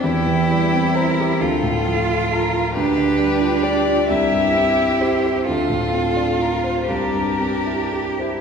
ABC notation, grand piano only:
X:1
M:6/8
L:1/16
Q:3/8=43
K:Cmix
V:1 name="Grand piano"
E,, E, G, C c G D,, A,, F, F A F | D,, D, G, F G F C,, G,, C E G c | D,, A,, C D F c C,, G,, C E G c |]